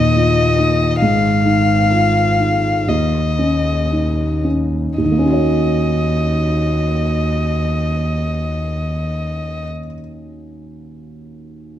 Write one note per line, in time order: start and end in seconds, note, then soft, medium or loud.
0.00 1.03 D#2 medium
0.00 1.05 A#2 soft
0.00 0.58 D#4 medium
0.00 0.16 F4 soft
0.00 0.98 D#5 medium
0.16 0.59 F4 soft
0.58 1.02 D#4 soft
1.01 2.90 G#1 soft
1.01 2.85 G#2 soft
1.01 2.90 F5 medium
1.45 2.20 D#4 soft
1.91 2.39 F4 soft
2.39 2.89 D#4 soft
2.88 4.95 D#2 soft
2.88 4.99 D#2 soft
2.88 4.45 D#5 medium
3.39 4.23 C#4 soft
3.92 4.46 D#4 soft
4.44 4.99 C#4 soft
4.98 9.64 D#2 soft
4.98 9.66 D#2 soft
4.98 9.66 D#5 soft
5.05 9.71 D#3 soft
5.12 9.78 A#3 soft
5.19 9.85 C#4 soft
5.26 9.92 F#4 soft
5.33 9.99 C#5 soft